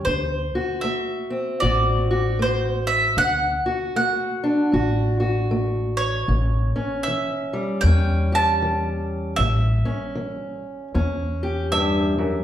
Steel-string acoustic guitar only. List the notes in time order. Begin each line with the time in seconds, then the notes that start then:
0.07 D3
0.55 F#4
0.84 A3
1.30 C4
1.62 A2 F#4
2.11 F#4
2.39 A3
3.17 D3
3.66 F#4
3.96 A3
4.44 D4
4.72 A2 F#4
5.20 F#4
5.51 A3
6.29 A2
6.76 C#4
7.07 E3
7.53 G3
7.85 E2 C#4
8.32 G4
8.62 E3
9.40 A2
9.85 C#4
10.15 E3
10.94 E2 C#4
11.43 G4
11.72 G2
12.18 F#2